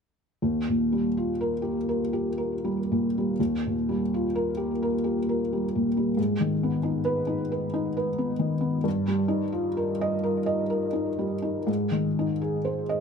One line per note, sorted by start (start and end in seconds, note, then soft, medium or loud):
0.42 3.33 D#2 soft
0.69 1.06 A#2 soft
0.92 1.30 G3 soft
1.17 1.54 F4 soft
1.41 1.78 A#4 soft
1.62 2.01 G4 soft
1.89 2.27 A#4 soft
2.13 2.52 G4 soft
2.38 2.78 A#4 soft
2.64 3.05 G3 soft
2.92 3.30 A#2 soft
3.18 3.40 G3 soft
3.40 6.15 D#2 soft
3.67 4.02 A#2 soft
3.89 4.25 G3 soft
4.14 4.49 F4 soft
4.35 4.71 A#4 soft
4.57 4.94 G4 soft
4.83 5.18 A#4 soft
5.04 5.41 G4 soft
5.29 5.65 A#4 soft
5.53 5.88 G3 soft
5.75 6.10 A#2 soft
5.97 6.19 G3 soft
6.17 8.81 G#2 soft
6.41 6.77 D#3 soft
6.63 6.99 B3 soft
6.83 7.20 D#4 soft
7.05 7.42 B4 soft
7.27 7.64 D#4 soft
7.52 7.87 B4 soft
7.74 8.09 D#4 soft
7.97 8.32 B4 soft
8.18 8.54 B3 soft
8.39 8.76 D#3 soft
8.61 8.84 B3 soft
8.84 11.64 G2 soft
9.08 9.44 G3 soft
9.28 9.66 D#4 soft
9.52 9.90 F4 soft
9.77 10.14 A#4 soft
10.01 10.38 D#5 medium
10.24 10.61 A#4 soft
10.46 10.85 D#5 soft
10.70 11.09 A#4 soft
10.93 11.33 D#4 soft
11.19 11.58 G3 soft
11.42 11.68 D#4 soft
11.67 13.00 G#2 soft
11.92 12.32 D#3 soft
12.19 12.58 D#4 soft
12.41 12.82 G#4 soft
12.65 13.00 C5 soft
12.89 13.00 D#5 soft